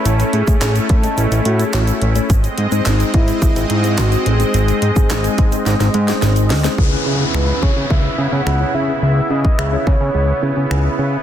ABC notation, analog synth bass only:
X:1
M:4/4
L:1/16
Q:1/4=107
K:C#m
V:1 name="Analog synth bass" clef=bass
A,,,2 A,, A,, A,,,2 A,,2 A,,, A,,, A,,2 A,,,2 A,,,2 | G,,,2 G,, G,, G,,,2 G,,2 G,,, G,,, G,,2 G,,,2 A,,,2 | G,,,2 G,, G,, G,,,2 G,,2 G,,, G,,, G,,2 G,,,2 =D,,2 | C,,2 C,2 C,,2 C, C, C,,2 C, C, C,,2 C,2 |
C,,2 C,2 C,,2 C, C, C,,2 C, C, C,,2 C,2 |]